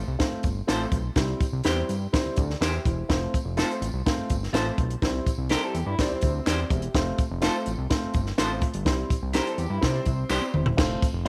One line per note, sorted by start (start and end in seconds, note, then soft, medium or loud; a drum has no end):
0.08 0.17 C2 loud
0.19 0.46 A3 medium
0.19 0.46 C4 medium
0.19 0.46 F4 medium
0.19 0.46 C5 medium
0.19 kick medium
0.19 snare loud
0.19 closed hi-hat medium
0.19 tambourine soft
0.31 0.36 G1 soft
0.43 0.62 G1 medium
0.43 kick medium
0.43 closed hi-hat medium
0.43 tambourine soft
0.67 0.86 A1 loud
0.67 0.94 A3 medium
0.67 0.94 C4 medium
0.67 0.94 F4 medium
0.67 0.80 F4 medium
0.67 0.81 A4 medium
0.67 0.94 C5 medium
0.67 0.81 C5 medium
0.67 snare loud
0.67 clap loud
0.67 closed hi-hat loud
0.67 tambourine loud
0.92 1.10 B1 medium
0.92 kick medium
0.92 closed hi-hat medium
0.92 tambourine soft
1.16 1.34 C2 loud
1.16 1.43 G3 medium
1.16 1.43 C4 medium
1.16 1.43 E4 medium
1.16 1.43 C5 medium
1.16 kick medium
1.16 snare medium
1.16 closed hi-hat medium
1.16 tambourine soft
1.41 kick medium
1.41 closed hi-hat medium
1.41 tambourine medium
1.53 1.62 C2 medium
1.64 1.83 E2 loud
1.64 1.91 G3 medium
1.64 1.91 C4 medium
1.64 1.91 E4 medium
1.64 1.77 E4 medium
1.64 1.77 G4 medium
1.64 1.91 C5 medium
1.64 1.78 C5 medium
1.64 snare medium
1.64 clap medium
1.64 closed hi-hat medium
1.64 tambourine medium
1.89 2.07 G2 medium
1.89 closed hi-hat medium
1.89 tambourine soft
2.13 2.39 G3 medium
2.13 2.39 C4 medium
2.13 2.37 E4 medium
2.13 2.37 C5 medium
2.13 kick loud
2.13 snare loud
2.13 closed hi-hat medium
2.13 tambourine medium
2.25 2.30 D2 soft
2.36 2.55 D2 medium
2.36 2.60 D5 medium
2.36 kick medium
2.36 closed hi-hat medium
2.36 tambourine medium
2.50 snare soft
2.61 2.79 E2 medium
2.61 2.74 E4 medium
2.61 2.84 G4 medium
2.61 2.74 G4 medium
2.61 2.74 C5 medium
2.61 2.84 E5 medium
2.61 snare loud
2.61 clap medium
2.61 closed hi-hat loud
2.61 tambourine loud
2.85 3.04 E1 medium
2.85 3.31 E4 soft
2.85 3.08 C5 medium
2.85 kick medium
2.85 closed hi-hat medium
2.85 tambourine soft
3.09 3.27 F1 loud
3.09 3.35 A3 medium
3.09 3.35 C4 medium
3.09 3.35 F4 medium
3.09 3.36 C5 medium
3.09 kick medium
3.09 snare loud
3.09 closed hi-hat medium
3.34 kick medium
3.34 closed hi-hat medium
3.34 tambourine medium
3.45 3.63 F1 medium
3.57 3.83 A3 medium
3.57 3.84 C4 medium
3.57 3.70 F4 medium
3.57 3.84 F4 medium
3.57 3.70 A4 medium
3.57 3.84 C5 medium
3.57 3.71 C5 medium
3.57 snare medium
3.57 clap medium
3.57 closed hi-hat medium
3.57 tambourine medium
3.71 closed hi-hat soft
3.81 3.90 A1 medium
3.81 closed hi-hat medium
3.81 tambourine soft
3.93 4.02 C2 loud
4.06 4.32 A3 medium
4.06 4.32 C4 medium
4.06 4.32 F4 medium
4.06 4.32 C5 medium
4.06 kick medium
4.06 snare loud
4.06 closed hi-hat medium
4.06 tambourine medium
4.17 4.22 G1 soft
4.30 4.48 G1 medium
4.30 kick medium
4.30 closed hi-hat medium
4.30 tambourine medium
4.43 snare soft
4.53 4.71 A1 loud
4.53 4.80 A3 medium
4.53 4.80 C4 medium
4.53 4.66 F4 medium
4.53 4.80 F4 medium
4.53 4.66 A4 medium
4.53 4.80 C5 medium
4.53 4.67 C5 medium
4.53 snare loud
4.53 clap medium
4.53 closed hi-hat medium
4.53 tambourine medium
4.78 4.96 B1 medium
4.78 kick medium
4.78 closed hi-hat medium
4.90 closed hi-hat medium
5.02 5.20 C2 loud
5.02 5.28 G3 medium
5.02 5.28 C4 medium
5.02 5.28 E4 medium
5.02 5.28 C5 medium
5.02 kick medium
5.02 snare medium
5.02 closed hi-hat medium
5.02 tambourine soft
5.26 kick medium
5.26 closed hi-hat medium
5.26 tambourine medium
5.38 5.56 C2 medium
5.49 5.77 G3 medium
5.49 5.76 C4 medium
5.49 5.62 E4 medium
5.49 5.76 E4 medium
5.49 5.63 G4 medium
5.49 5.77 A4 medium
5.49 5.62 A#4 medium
5.49 5.63 C5 medium
5.49 snare medium
5.49 clap medium
5.49 closed hi-hat medium
5.49 tambourine medium
5.63 5.74 A4 medium
5.74 5.83 E2 medium
5.74 5.85 G4 medium
5.74 closed hi-hat medium
5.74 tambourine soft
5.86 5.95 G2 medium
5.86 5.98 E4 medium
5.99 6.25 G3 medium
5.99 6.25 C4 medium
5.99 6.10 D4 medium
5.99 6.22 E4 medium
5.99 6.22 C5 medium
5.99 kick medium
5.99 snare loud
5.99 closed hi-hat medium
5.99 tambourine medium
6.11 6.15 D2 soft
6.11 6.79 C4 medium
6.21 6.41 D2 loud
6.21 6.46 E4 soft
6.21 6.46 C5 medium
6.21 kick medium
6.21 closed hi-hat medium
6.21 tambourine soft
6.46 6.64 E2 medium
6.46 6.58 E4 medium
6.46 6.59 G4 medium
6.46 6.59 C5 medium
6.46 6.69 D5 medium
6.46 snare loud
6.46 clap loud
6.46 closed hi-hat loud
6.46 tambourine loud
6.70 6.88 E1 medium
6.70 7.16 G4 soft
6.70 7.16 E5 medium
6.70 kick medium
6.70 closed hi-hat medium
6.70 tambourine soft
6.82 closed hi-hat medium
6.94 7.12 F1 loud
6.94 7.21 A3 medium
6.94 7.21 C4 medium
6.94 7.21 F4 medium
6.94 7.21 C5 medium
6.94 kick medium
6.94 snare loud
6.94 closed hi-hat medium
6.94 tambourine soft
7.18 kick medium
7.18 closed hi-hat medium
7.18 tambourine medium
7.31 7.49 F1 medium
7.41 7.68 A3 medium
7.41 7.68 C4 medium
7.41 7.68 F4 medium
7.41 7.55 F4 medium
7.41 7.55 A4 medium
7.41 7.68 C5 medium
7.41 7.56 C5 medium
7.41 snare medium
7.41 clap medium
7.41 closed hi-hat medium
7.41 tambourine medium
7.66 7.76 A1 medium
7.66 closed hi-hat medium
7.66 tambourine medium
7.78 7.87 C2 medium
7.90 8.16 A3 medium
7.90 8.16 C4 medium
7.90 8.17 F4 medium
7.90 8.16 C5 medium
7.90 kick medium
7.90 snare loud
7.90 closed hi-hat medium
7.90 tambourine soft
8.03 8.08 G1 medium
8.14 8.32 G1 loud
8.14 kick medium
8.14 closed hi-hat medium
8.14 tambourine medium
8.26 snare soft
8.38 8.66 A1 medium
8.38 8.65 A3 medium
8.38 8.65 C4 medium
8.38 8.64 F4 medium
8.38 8.51 F4 medium
8.38 8.51 A4 medium
8.38 8.65 C5 medium
8.38 8.51 C5 medium
8.38 snare loud
8.38 clap medium
8.38 closed hi-hat loud
8.38 tambourine loud
8.61 kick medium
8.61 closed hi-hat medium
8.74 8.88 G1 medium
8.74 closed hi-hat medium
8.85 9.04 C2 loud
8.85 9.12 G3 medium
8.85 9.12 C4 medium
8.85 9.12 E4 medium
8.85 9.13 C5 medium
8.85 kick medium
8.85 snare loud
8.85 closed hi-hat medium
9.10 kick medium
9.10 closed hi-hat medium
9.10 tambourine medium
9.22 9.40 C2 medium
9.33 9.61 G3 medium
9.33 9.61 C4 medium
9.33 9.46 E4 medium
9.33 9.61 E4 medium
9.33 9.47 G4 medium
9.33 9.46 A#4 medium
9.33 9.61 C5 medium
9.33 9.47 C5 medium
9.33 snare medium
9.33 clap medium
9.33 closed hi-hat medium
9.33 tambourine medium
9.46 9.58 A4 medium
9.46 closed hi-hat soft
9.58 9.67 E2 medium
9.58 9.70 G4 medium
9.58 closed hi-hat medium
9.58 tambourine soft
9.70 9.79 G2 loud
9.70 9.82 E4 medium
9.81 10.00 C3 loud
9.81 10.08 G3 medium
9.81 10.08 C4 medium
9.81 9.94 D4 medium
9.81 10.08 E4 medium
9.81 10.08 C5 medium
9.81 kick medium
9.81 snare loud
9.81 closed hi-hat medium
9.81 tambourine medium
9.94 10.63 C4 medium
10.06 10.25 C2 medium
10.06 kick medium
10.06 closed hi-hat medium
10.06 tambourine soft
10.29 10.39 C2 loud
10.29 10.42 E4 medium
10.29 10.43 G4 medium
10.29 10.43 C5 medium
10.29 10.53 D5 medium
10.29 snare medium
10.29 clap loud
10.29 tambourine loud
10.42 high tom medium
10.54 10.72 E1 medium
10.54 11.00 E4 soft
10.54 10.76 C5 medium
10.54 mid tom medium
10.66 floor tom medium
10.77 10.96 F1 loud
10.77 11.04 A3 medium
10.77 11.05 C4 medium
10.77 11.04 F4 medium
10.77 11.05 C5 medium
10.77 kick loud
10.77 snare loud
10.77 crash medium
11.02 kick loud
11.02 closed hi-hat medium
11.02 tambourine medium
11.13 11.28 F1 medium
11.25 11.28 A3 medium